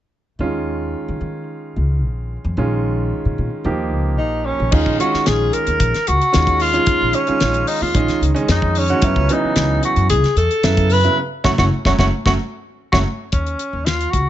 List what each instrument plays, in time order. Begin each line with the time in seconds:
0.39 upright bass D#2, grand piano D#3 G#3 C#4 F4
1.08 upright bass D#3
1.21 upright bass D#3
1.76 upright bass C#2
2.04 upright bass A#1
2.44 upright bass F2
2.57 upright bass A#1, grand piano D#3 G#3 C#4 F4
3.25 upright bass A#2
3.38 upright bass A#2
3.64 upright bass D#2, grand piano F3 A#3 D#4 G4
3.92 upright bass C#2
4.18 upright bass A#1, tenor saxophone D#4
4.46 tenor saxophone C#4
4.60 upright bass A#1
4.71 upright bass D#2, grand piano D#3 G#3 C#4 F4, tenor saxophone D#4, kick, crash
4.86 upright bass A#1, kick
4.99 grand piano D#3 G#3 C#4 F4, tenor saxophone F#4, closed hi-hat
5.14 muted upright bass stroke, snare
5.26 upright bass A#1, tenor saxophone G#4, snare, closed hi-hat
5.53 tenor saxophone A#4, closed hi-hat
5.67 upright bass D#2, closed hi-hat
5.80 upright bass A#1, kick, closed hi-hat
5.94 snare, closed hi-hat
6.07 upright bass C#2, tenor saxophone F#4, closed hi-hat
6.22 closed hi-hat
6.33 upright bass D#2, grand piano D#3 G#3 C#4 F4, snare, closed hi-hat
6.47 kick, closed hi-hat
6.60 tenor saxophone F4, open hi-hat
6.73 grand piano D#3 G#3 C#4 F4, closed hi-hat
6.86 upright bass D#2, kick, closed hi-hat
7.02 upright bass A#1
7.13 tenor saxophone C#4, closed hi-hat
7.27 grand piano D#3 G#3 C#4 F4, muted upright bass stroke, closed hi-hat
7.40 upright bass A#1, grand piano D#3 G#3 C#4 F4, snare, closed hi-hat
7.54 closed hi-hat
7.67 tenor saxophone D#4, open hi-hat
7.81 upright bass D#2, tenor saxophone F4
7.94 upright bass A#1, grand piano D#3 G#3 C#4 D#4, kick, closed hi-hat
8.08 muted upright bass stroke, snare, closed hi-hat
8.21 upright bass C#2, closed hi-hat
8.34 grand piano D#3 G#3 C#4 D#4, closed hi-hat
8.48 upright bass F2, tenor saxophone D#4, snare, closed hi-hat
8.62 kick
8.75 tenor saxophone C#4, open hi-hat
8.88 grand piano D#3 G#3 C#4 F#4, closed hi-hat
9.02 upright bass F#2, grand piano C#3 F#3 B3 E4, kick, closed hi-hat
9.16 upright bass C#2, kick
9.29 grand piano C#3 E3 F#3 B3, tenor saxophone D#4, closed hi-hat
9.44 muted upright bass stroke
9.56 upright bass C#2, snare, closed hi-hat
9.83 tenor saxophone F#4, closed hi-hat
9.96 upright bass F#2, closed hi-hat
10.10 upright bass C#2, tenor saxophone G#4, kick, closed hi-hat
10.23 muted upright bass stroke, snare, closed hi-hat
10.36 upright bass E2, tenor saxophone A4, closed hi-hat
10.51 closed hi-hat
10.63 upright bass F#2, grand piano C#3 F#3 B3 E4, snare, closed hi-hat
10.77 kick, closed hi-hat
10.90 tenor saxophone B4, open hi-hat
11.04 grand piano C#3 F#3 B3 E4, closed hi-hat
11.44 upright bass F#1, grand piano F#3 A3 C#4, tenor saxophone F#4, kick, snare
11.58 upright bass F#1, grand piano F#3 A3 C#4, tenor saxophone F#4, kick, snare
11.85 upright bass F#1, grand piano F#3 A3 C#4, tenor saxophone F#4, kick, snare
11.98 upright bass F#1, grand piano F#3 A3 C#4, tenor saxophone F#4, kick, snare
12.25 upright bass F#1, grand piano F#3 A3 C#4, tenor saxophone F#4, kick, snare
12.92 upright bass F#1, grand piano F#3 A3 C#4, tenor saxophone F#4, kick, snare
13.32 upright bass D#2, tenor saxophone C#4, kick, closed hi-hat
13.46 closed hi-hat
13.59 closed hi-hat
13.73 upright bass D#2
13.85 tenor saxophone F4, snare, closed hi-hat
14.01 closed hi-hat
14.11 upright bass C#2, tenor saxophone F#4, kick, closed hi-hat